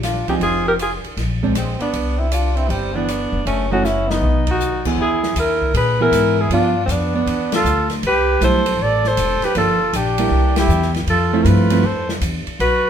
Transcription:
Already playing: A#1
0.02 D4 F4, cross-stick, snare, hi-hat pedal, ride
0.28 F3 C4 D#4 G4 G#4, muted upright bass stroke, kick, ride
0.40 F1 F4 G#4, ride
0.67 G4 A#4
0.79 F4 G#4, hi-hat pedal, ride
1.04 muted upright bass stroke, ride
1.17 A#1, snare, ride
1.43 G#3 C4 D4, kick
1.55 G#3 C4, cross-stick, hi-hat pedal, ride
1.80 B3 D4, muted upright bass stroke, ride
1.93 C2, ride
2.18 C4 E4
2.31 D4 F4, hi-hat pedal, ride
2.56 C4 E4, ride
2.69 G1 G3 C4, ride
2.94 E3 B3 D4
3.08 cross-stick, hi-hat pedal, ride
3.32 F1
3.45 F#1 A3 C#4, ride
3.69 E3 A3 C#4 D#4 F#4
3.83 C#4 E4, snare, hi-hat pedal
4.08 B3 D#4, snare
4.21 B1, mid tom
4.47 D#4 F#4, kick, ride
4.60 hi-hat pedal
4.85 E3 B3 G#4, kick, crash
4.98 E2 E4 G#4
5.23 snare
5.36 D#2 E4 A#4, hi-hat pedal, ride
5.62 kick
5.74 A#2 G#4 B4, ride
6.00 E3 B3 E4 G#4 A#4
6.12 G#2, hi-hat pedal, ride
6.40 E4 G#4
6.50 G2 F3 B3 D4 F4, ride
6.85 F2 A3 C4, hi-hat pedal, ride
6.91 B3 D4
7.15 B3 D4
7.26 E2, ride
7.52 F4 A4, snare, ride
7.64 D2, hi-hat pedal
7.90 snare, ride
8.03 C2 G4 B4, ride
8.41 B1 G3 A3 E4 A4 C5, hi-hat pedal, ride
8.66 ride
8.79 A1 A4 D5
9.04 A4 C5, snare
9.17 E1, hi-hat pedal, ride
9.42 G4 B4, muted upright bass stroke, snare, ride
9.55 G1 F3 A#3 D4 F4 A4, ride
9.93 A#1 D4 G4, hi-hat pedal, ride
10.18 G3 A#3 E4, ride
10.31 C2
10.56 E4 G4, snare, ride
10.68 E2, hi-hat pedal
10.82 snare
10.94 snare, ride
11.07 F2 F4 A4, ride
11.33 F3 A3 C4 E4
11.42 G2 F4 A#4, hi-hat pedal, ride
11.48 F4 B4
11.70 F3 A3 C4 E4, ride
11.84 F2 A4 C5
12.09 snare
12.21 E2, hi-hat pedal, ride
12.47 muted upright bass stroke, ride
12.59 B1 F#4 B4, ride

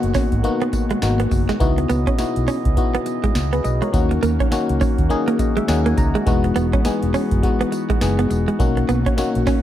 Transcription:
Already playing: B2 D#3 F#3 G#3 A#3 B3 D#4 F#4
0.03 F#1, closed hi-hat
0.14 C#4, kick, snare, open hi-hat, tambourine
0.32 G#1, kick, closed hi-hat
0.43 A#3 B3 D#4 F#4, closed hi-hat
0.61 B3, closed hi-hat
0.73 muted clean electric guitar stroke, kick, closed hi-hat, tambourine
0.90 G#3, closed hi-hat
1.02 G#1 A#3 B3 D#4 F#4, snare, closed hi-hat, tambourine
1.20 B3, closed hi-hat
1.31 F#1, muted clean electric guitar stroke, kick, open hi-hat, tambourine
1.49 G#3, snare, closed hi-hat
1.60 C#2 C#3 E3 B3 D#4 E4 F#4 D#5, kick, closed hi-hat, tambourine
1.78 muted clean electric guitar stroke, closed hi-hat
1.90 C#2 B3, closed hi-hat, tambourine
2.07 C#4, kick, closed hi-hat
2.18 B3 D#4 E4 F#4, muted fingered electric bass stroke, snare, closed hi-hat, tambourine
2.36 B1, closed hi-hat
2.48 C#4, open hi-hat, tambourine
2.65 C#2, kick, closed hi-hat
2.77 B3 D#4 E4 F#4, kick, closed hi-hat
2.95 B3, closed hi-hat
3.06 muted clean electric guitar stroke, closed hi-hat, tambourine
3.24 G#3, kick, closed hi-hat
3.35 C#2, snare, closed hi-hat, tambourine
3.53 B3 G#4 B4, closed hi-hat
3.64 B1 B4 D#5, muted clean electric guitar stroke, closed hi-hat, tambourine
3.82 G#3 A#4 C#5, closed hi-hat
3.93 D#2 D#3 F#3 A#3 C#4 D#4 F#4, kick, closed hi-hat, tambourine
4.11 muted clean electric guitar stroke, closed hi-hat
4.23 D#2 A#3, closed hi-hat, tambourine
4.40 C#4, kick, closed hi-hat
4.51 A#3 C#4 D#4 F#4, muted fingered electric bass stroke, snare, closed hi-hat, tambourine
4.69 C#2, closed hi-hat
4.81 C#4, kick, open hi-hat, tambourine
4.98 D#2, kick, closed hi-hat
5.09 A#3 C#4 D#4 G#4, closed hi-hat
5.28 A#3, closed hi-hat
5.39 D#5, muted clean electric guitar stroke, kick, closed hi-hat, tambourine
5.57 G#3 E5, closed hi-hat
5.68 D#2 A#3 C#4 D#4 G#4 F#5, snare, closed hi-hat, tambourine
5.86 A#3 G#5, closed hi-hat
5.97 C#2 A#5, muted clean electric guitar stroke, kick, closed hi-hat, tambourine
6.15 G#3, closed hi-hat
6.26 E1 E3 G#3 B3 D#4 F#4, kick, closed hi-hat, tambourine
6.44 muted clean electric guitar stroke, closed hi-hat
6.56 E1 B3, closed hi-hat, tambourine
6.73 C#4, kick, closed hi-hat
6.84 G#3 B3 D#4 G#4, muted fingered electric bass stroke, snare, closed hi-hat, tambourine
7.03 E1, closed hi-hat
7.14 C#4, open hi-hat, tambourine
7.31 F#1, kick, closed hi-hat
7.43 G#3 B3 D#4 F#4, kick, closed hi-hat
7.61 B3, closed hi-hat
7.72 muted clean electric guitar stroke, closed hi-hat, tambourine
7.90 G#3, kick, closed hi-hat
8.01 F#1 G#3 B3 D#4 G#4, snare, closed hi-hat, tambourine
8.19 B3, closed hi-hat
8.30 E1, muted clean electric guitar stroke, closed hi-hat, tambourine
8.48 G#3, closed hi-hat
8.59 B1 B2 D#3 F#3 A#3 C#4 D#4 F#4, kick, closed hi-hat, tambourine
8.77 muted clean electric guitar stroke, closed hi-hat
8.89 B1 B3, closed hi-hat, tambourine
9.06 C#4, kick, closed hi-hat
9.17 A#3 C#4 D#4 F#4, muted fingered electric bass stroke, snare, closed hi-hat, tambourine
9.35 A#1, closed hi-hat
9.47 C#4, kick, snare, open hi-hat, tambourine

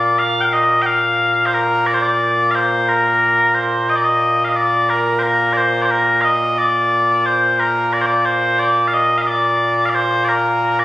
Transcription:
Already playing: A#2 A#3 D5
0.19 F5
0.41 G5
0.45 F5
0.53 D#5
0.82 G5
0.86 F5
1.46 C5
1.54 A#4
1.86 D5
1.94 C5
2.02 D5
2.51 C5 F5
2.89 A#4
3.55 C5
3.89 D#5
3.96 D5
4.04 D#5
4.45 F5
4.49 D#5
4.56 D5
4.90 A#4
5.19 A#4 C5
5.53 D5
5.57 C5
5.82 C5 D5
5.91 A#4
6.21 D#5 F5
6.58 D5
7.26 C5
7.60 A#4
7.93 D5
8.01 C5
8.06 D5
8.25 C5
8.59 D5
8.88 F5
8.94 D#5
9.18 D#5 F5
9.27 D5
9.86 D5 F5
9.95 C5
10.24 A#4 D5
10.79 D5

